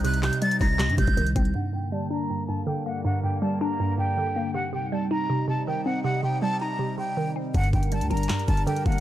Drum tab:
HH |x--x--x--x--x--x--o-----x--x--x--x--x--x--x--x--|------------------------------------------------|------------------------------------------------|------------------------------------------------|
CP |------x-----------------x-----------------------|------------------------------------------------|------------------------------------------------|------------------------------------------------|
SD |------o-----------------o-----------------------|------------------------------------------------|------------------------------------------------|------------------------------------------------|
BD |------------------o-----------o--o--------o-----|------------------------------------------------|------------------------------------------------|------------------------------------------------|

HH |------------------------------------------------|x--x--x--x--x--x--x-x-x-x--x--x--x--x--x--x-x---|
CP |------------------------------------------------|------------------------x-----------------------|
SD |------------------------------------------------|------------------------o-----------------------|
BD |------------------------------------------------|o-----o-----------------------o-----------o-----|